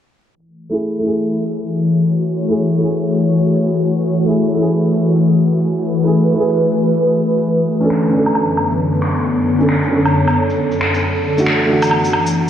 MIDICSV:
0, 0, Header, 1, 4, 480
1, 0, Start_track
1, 0, Key_signature, 3, "minor"
1, 0, Tempo, 444444
1, 387, Time_signature, 4, 2, 24, 8
1, 13499, End_track
2, 0, Start_track
2, 0, Title_t, "Felt piano"
2, 0, Program_c, 0, 0
2, 751, Note_on_c, 0, 57, 66
2, 770, Note_on_c, 0, 64, 63
2, 791, Note_on_c, 0, 68, 74
2, 1049, Note_off_c, 0, 57, 0
2, 1065, Note_on_c, 0, 57, 69
2, 1083, Note_off_c, 0, 64, 0
2, 1093, Note_off_c, 0, 68, 0
2, 1107, Note_on_c, 0, 64, 67
2, 1150, Note_on_c, 0, 68, 77
2, 2637, Note_off_c, 0, 57, 0
2, 2658, Note_off_c, 0, 64, 0
2, 2671, Note_on_c, 0, 57, 67
2, 2679, Note_off_c, 0, 68, 0
2, 2693, Note_on_c, 0, 64, 63
2, 2714, Note_on_c, 0, 68, 75
2, 2973, Note_off_c, 0, 57, 0
2, 2989, Note_on_c, 0, 57, 75
2, 3004, Note_off_c, 0, 64, 0
2, 3015, Note_off_c, 0, 68, 0
2, 3030, Note_on_c, 0, 64, 67
2, 3072, Note_on_c, 0, 68, 82
2, 4559, Note_off_c, 0, 57, 0
2, 4579, Note_off_c, 0, 64, 0
2, 4588, Note_on_c, 0, 57, 69
2, 4600, Note_off_c, 0, 68, 0
2, 4610, Note_on_c, 0, 64, 63
2, 4632, Note_on_c, 0, 68, 73
2, 4885, Note_off_c, 0, 57, 0
2, 4901, Note_on_c, 0, 57, 75
2, 4923, Note_off_c, 0, 64, 0
2, 4934, Note_off_c, 0, 68, 0
2, 4944, Note_on_c, 0, 64, 67
2, 4987, Note_on_c, 0, 68, 81
2, 6475, Note_off_c, 0, 57, 0
2, 6496, Note_off_c, 0, 64, 0
2, 6510, Note_on_c, 0, 57, 69
2, 6518, Note_off_c, 0, 68, 0
2, 6534, Note_on_c, 0, 64, 63
2, 6554, Note_on_c, 0, 68, 74
2, 6805, Note_off_c, 0, 57, 0
2, 6821, Note_on_c, 0, 57, 71
2, 6845, Note_off_c, 0, 64, 0
2, 6855, Note_off_c, 0, 68, 0
2, 6863, Note_on_c, 0, 64, 66
2, 6908, Note_on_c, 0, 68, 80
2, 8033, Note_off_c, 0, 57, 0
2, 8053, Note_off_c, 0, 64, 0
2, 8076, Note_off_c, 0, 68, 0
2, 8429, Note_on_c, 0, 61, 70
2, 8455, Note_on_c, 0, 62, 64
2, 8475, Note_on_c, 0, 69, 79
2, 8729, Note_off_c, 0, 61, 0
2, 8745, Note_on_c, 0, 61, 73
2, 8765, Note_off_c, 0, 62, 0
2, 8775, Note_off_c, 0, 69, 0
2, 8787, Note_on_c, 0, 62, 67
2, 8833, Note_on_c, 0, 69, 80
2, 10317, Note_off_c, 0, 61, 0
2, 10338, Note_off_c, 0, 62, 0
2, 10350, Note_on_c, 0, 61, 71
2, 10361, Note_off_c, 0, 69, 0
2, 10374, Note_on_c, 0, 62, 62
2, 10394, Note_on_c, 0, 69, 75
2, 10648, Note_off_c, 0, 61, 0
2, 10665, Note_on_c, 0, 61, 73
2, 10685, Note_off_c, 0, 62, 0
2, 10695, Note_off_c, 0, 69, 0
2, 10708, Note_on_c, 0, 62, 69
2, 10751, Note_on_c, 0, 69, 83
2, 11874, Note_off_c, 0, 61, 0
2, 11896, Note_off_c, 0, 62, 0
2, 11918, Note_off_c, 0, 69, 0
2, 12268, Note_on_c, 0, 57, 72
2, 12291, Note_on_c, 0, 62, 67
2, 12314, Note_on_c, 0, 66, 77
2, 12565, Note_off_c, 0, 57, 0
2, 12582, Note_on_c, 0, 57, 75
2, 12603, Note_off_c, 0, 62, 0
2, 12615, Note_off_c, 0, 66, 0
2, 12622, Note_on_c, 0, 62, 71
2, 12666, Note_on_c, 0, 66, 83
2, 13499, Note_off_c, 0, 57, 0
2, 13499, Note_off_c, 0, 62, 0
2, 13499, Note_off_c, 0, 66, 0
2, 13499, End_track
3, 0, Start_track
3, 0, Title_t, "Ambient pad"
3, 0, Program_c, 1, 92
3, 388, Note_on_c, 1, 52, 87
3, 494, Note_on_c, 1, 57, 81
3, 1054, Note_on_c, 1, 66, 73
3, 1311, Note_on_c, 1, 73, 83
3, 5546, Note_on_c, 1, 71, 87
3, 5676, Note_off_c, 1, 73, 0
3, 8064, Note_off_c, 1, 57, 0
3, 8067, Note_off_c, 1, 52, 0
3, 8072, Note_on_c, 1, 42, 83
3, 8158, Note_on_c, 1, 50, 69
3, 8440, Note_on_c, 1, 59, 78
3, 8725, Note_off_c, 1, 66, 0
3, 8768, Note_off_c, 1, 71, 0
3, 9207, Note_on_c, 1, 69, 85
3, 9443, Note_on_c, 1, 73, 73
3, 11902, Note_off_c, 1, 50, 0
3, 11903, Note_on_c, 1, 52, 73
3, 11907, Note_off_c, 1, 73, 0
3, 11909, Note_off_c, 1, 42, 0
3, 12074, Note_on_c, 1, 57, 70
3, 12145, Note_on_c, 1, 66, 79
3, 12737, Note_off_c, 1, 59, 0
3, 13456, Note_off_c, 1, 69, 0
3, 13499, Note_off_c, 1, 52, 0
3, 13499, Note_off_c, 1, 57, 0
3, 13499, Note_off_c, 1, 66, 0
3, 13499, End_track
4, 0, Start_track
4, 0, Title_t, "Drums"
4, 774, Note_on_c, 9, 82, 51
4, 882, Note_off_c, 9, 82, 0
4, 1248, Note_on_c, 9, 82, 49
4, 1356, Note_off_c, 9, 82, 0
4, 1487, Note_on_c, 9, 82, 29
4, 1595, Note_off_c, 9, 82, 0
4, 1727, Note_on_c, 9, 82, 51
4, 1835, Note_off_c, 9, 82, 0
4, 1973, Note_on_c, 9, 82, 40
4, 2081, Note_off_c, 9, 82, 0
4, 2215, Note_on_c, 9, 82, 52
4, 2323, Note_off_c, 9, 82, 0
4, 2694, Note_on_c, 9, 82, 50
4, 2802, Note_off_c, 9, 82, 0
4, 2934, Note_on_c, 9, 82, 30
4, 3042, Note_off_c, 9, 82, 0
4, 3172, Note_on_c, 9, 82, 49
4, 3280, Note_off_c, 9, 82, 0
4, 3412, Note_on_c, 9, 82, 29
4, 3520, Note_off_c, 9, 82, 0
4, 3650, Note_on_c, 9, 82, 50
4, 3758, Note_off_c, 9, 82, 0
4, 3889, Note_on_c, 9, 82, 42
4, 3997, Note_off_c, 9, 82, 0
4, 4135, Note_on_c, 9, 82, 51
4, 4243, Note_off_c, 9, 82, 0
4, 4615, Note_on_c, 9, 82, 51
4, 4723, Note_off_c, 9, 82, 0
4, 5089, Note_on_c, 9, 82, 49
4, 5197, Note_off_c, 9, 82, 0
4, 5329, Note_on_c, 9, 82, 28
4, 5437, Note_off_c, 9, 82, 0
4, 5570, Note_on_c, 9, 82, 51
4, 5678, Note_off_c, 9, 82, 0
4, 5805, Note_on_c, 9, 82, 40
4, 5913, Note_off_c, 9, 82, 0
4, 6046, Note_on_c, 9, 82, 52
4, 6154, Note_off_c, 9, 82, 0
4, 6527, Note_on_c, 9, 82, 47
4, 6635, Note_off_c, 9, 82, 0
4, 6772, Note_on_c, 9, 82, 28
4, 6880, Note_off_c, 9, 82, 0
4, 7006, Note_on_c, 9, 82, 50
4, 7114, Note_off_c, 9, 82, 0
4, 7248, Note_on_c, 9, 82, 28
4, 7356, Note_off_c, 9, 82, 0
4, 7486, Note_on_c, 9, 82, 49
4, 7594, Note_off_c, 9, 82, 0
4, 7728, Note_on_c, 9, 82, 40
4, 7836, Note_off_c, 9, 82, 0
4, 7968, Note_on_c, 9, 82, 50
4, 8076, Note_off_c, 9, 82, 0
4, 8446, Note_on_c, 9, 82, 49
4, 8535, Note_on_c, 9, 26, 94
4, 8554, Note_off_c, 9, 82, 0
4, 8643, Note_off_c, 9, 26, 0
4, 8923, Note_on_c, 9, 77, 51
4, 8923, Note_on_c, 9, 82, 49
4, 9019, Note_off_c, 9, 77, 0
4, 9019, Note_on_c, 9, 77, 51
4, 9031, Note_off_c, 9, 82, 0
4, 9127, Note_off_c, 9, 77, 0
4, 9169, Note_on_c, 9, 82, 28
4, 9259, Note_on_c, 9, 77, 47
4, 9277, Note_off_c, 9, 82, 0
4, 9367, Note_off_c, 9, 77, 0
4, 9408, Note_on_c, 9, 82, 50
4, 9516, Note_off_c, 9, 82, 0
4, 9649, Note_on_c, 9, 82, 38
4, 9742, Note_on_c, 9, 26, 95
4, 9757, Note_off_c, 9, 82, 0
4, 9850, Note_off_c, 9, 26, 0
4, 9889, Note_on_c, 9, 82, 49
4, 9997, Note_off_c, 9, 82, 0
4, 10372, Note_on_c, 9, 82, 48
4, 10463, Note_on_c, 9, 26, 89
4, 10480, Note_off_c, 9, 82, 0
4, 10571, Note_off_c, 9, 26, 0
4, 10618, Note_on_c, 9, 82, 27
4, 10726, Note_off_c, 9, 82, 0
4, 10859, Note_on_c, 9, 77, 54
4, 10859, Note_on_c, 9, 82, 46
4, 10967, Note_off_c, 9, 77, 0
4, 10967, Note_off_c, 9, 82, 0
4, 11097, Note_on_c, 9, 77, 58
4, 11097, Note_on_c, 9, 82, 28
4, 11205, Note_off_c, 9, 77, 0
4, 11205, Note_off_c, 9, 82, 0
4, 11338, Note_on_c, 9, 82, 48
4, 11446, Note_off_c, 9, 82, 0
4, 11574, Note_on_c, 9, 82, 37
4, 11674, Note_on_c, 9, 26, 92
4, 11682, Note_off_c, 9, 82, 0
4, 11782, Note_off_c, 9, 26, 0
4, 11819, Note_on_c, 9, 82, 48
4, 11927, Note_off_c, 9, 82, 0
4, 12292, Note_on_c, 9, 82, 52
4, 12382, Note_on_c, 9, 26, 92
4, 12400, Note_off_c, 9, 82, 0
4, 12490, Note_off_c, 9, 26, 0
4, 12770, Note_on_c, 9, 77, 56
4, 12770, Note_on_c, 9, 82, 48
4, 12863, Note_off_c, 9, 77, 0
4, 12863, Note_on_c, 9, 77, 58
4, 12878, Note_off_c, 9, 82, 0
4, 12971, Note_off_c, 9, 77, 0
4, 13009, Note_on_c, 9, 82, 28
4, 13104, Note_on_c, 9, 77, 50
4, 13117, Note_off_c, 9, 82, 0
4, 13212, Note_off_c, 9, 77, 0
4, 13247, Note_on_c, 9, 82, 50
4, 13355, Note_off_c, 9, 82, 0
4, 13499, End_track
0, 0, End_of_file